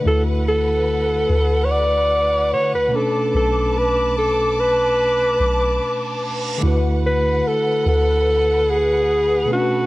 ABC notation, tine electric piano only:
X:1
M:4/4
L:1/8
Q:1/4=73
K:D
V:1 name="Tine electric piano"
[D,A,EFB]6- [D,A,EFB] [B,,A,CDB]- | [B,,A,CDB]6- [B,,A,CDB] z | [D,A,EFB]6- [D,A,EFB] [B,,A,CDB] |]